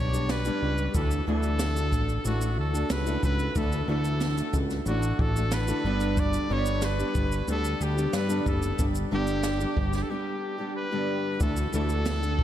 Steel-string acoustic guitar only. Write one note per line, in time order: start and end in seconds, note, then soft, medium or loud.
0.00 0.12 G3 medium
0.00 0.13 B3 medium
0.00 0.12 D4 medium
0.00 0.11 G4 medium
0.13 0.45 G3 soft
0.13 0.45 B3 soft
0.13 0.45 D4 soft
0.13 0.44 G4 medium
0.45 0.95 G2 soft
0.45 0.94 G3 medium
0.45 0.95 B3 medium
0.45 0.95 D4 medium
0.45 0.95 G4 medium
0.94 1.26 E3 medium
0.94 1.27 A3 medium
0.94 1.27 D4 medium
0.94 1.27 F#4 medium
1.27 1.76 D3 medium
1.27 1.76 E3 medium
1.27 1.77 A3 medium
1.27 1.76 D4 medium
1.27 1.75 F#4 medium
1.76 2.25 A3 soft
1.76 2.25 D4 soft
1.76 2.25 F#4 medium
2.25 2.74 E3 medium
2.25 2.75 A3 medium
2.25 2.73 D4 medium
2.25 2.72 F#4 medium
2.73 3.06 A3 soft
2.73 3.06 D4 soft
2.73 3.05 F#4 medium
3.06 3.54 E3 medium
3.06 3.55 A3 medium
3.06 3.56 D4 medium
3.06 3.56 F#4 medium
3.55 3.87 E3 medium
3.55 3.88 A3 medium
3.55 3.88 D4 medium
3.55 3.88 F#4 medium
3.88 4.37 D3 medium
3.88 4.38 E3 medium
3.88 4.38 A3 medium
3.88 4.37 D4 medium
3.88 4.36 F#4 medium
4.37 4.86 A3 soft
4.37 4.87 D4 soft
4.37 4.87 F#4 soft
4.86 5.35 E3 medium
4.86 5.36 A3 medium
4.86 5.36 D4 medium
4.86 5.34 F#4 medium
5.35 5.68 A3 soft
5.35 5.67 D4 soft
5.35 5.67 F#4 medium
5.68 5.84 D3 medium
5.68 5.85 E3 medium
5.68 5.85 A3 medium
5.68 5.85 D4 medium
5.68 5.85 F#4 medium
5.85 6.48 G2 medium
5.85 6.50 D3 medium
5.85 6.49 G3 medium
5.85 6.50 B3 medium
5.85 6.51 D4 medium
5.85 6.50 G4 medium
6.50 6.99 G2 medium
6.50 6.99 D3 medium
6.50 7.00 G3 medium
6.50 6.99 B3 medium
6.50 6.98 D4 medium
6.50 6.97 G4 medium
6.99 7.47 G3 soft
6.99 7.48 B3 soft
6.99 7.49 D4 soft
6.99 7.48 G4 medium
7.48 7.97 G3 medium
7.48 7.97 B3 medium
7.48 7.97 D4 medium
7.48 7.96 G4 medium
7.97 8.29 G3 soft
7.97 8.29 B3 soft
7.97 8.28 D4 medium
7.97 8.28 G4 medium
8.29 8.79 D3 medium
8.29 8.77 G3 medium
8.29 8.78 B3 medium
8.29 8.79 D4 medium
8.29 8.79 G4 medium
8.78 9.11 G3 medium
8.78 9.11 B3 medium
8.78 9.11 D4 medium
8.78 9.12 G4 medium
9.11 9.61 G2 medium
9.11 9.61 D3 medium
9.11 9.61 G3 medium
9.11 9.61 B3 medium
9.11 9.60 D4 medium
9.11 9.59 G4 medium
9.60 10.08 G3 soft
9.60 10.09 B3 soft
9.60 10.10 D4 soft
9.60 10.10 G4 medium
10.10 10.59 G3 medium
10.10 10.59 B3 medium
10.10 10.58 D4 medium
10.10 10.57 G4 medium
10.58 10.91 G3 soft
10.58 10.91 B3 soft
10.58 10.91 D4 soft
10.58 10.90 G4 medium
10.92 11.42 G2 medium
10.92 11.41 D3 medium
10.92 11.40 G3 medium
10.92 11.41 B3 medium
10.92 11.41 D4 medium
10.92 11.41 G4 medium
11.40 11.73 E3 medium
11.40 11.73 A3 medium
11.40 11.74 D4 medium
11.40 11.74 F#4 medium
11.73 12.22 D3 medium
11.73 12.23 E3 medium
11.73 12.23 A3 medium
11.73 12.23 D4 medium
11.73 12.21 F#4 medium
12.22 12.44 A3 soft
12.22 12.44 D4 soft
12.22 12.44 F#4 soft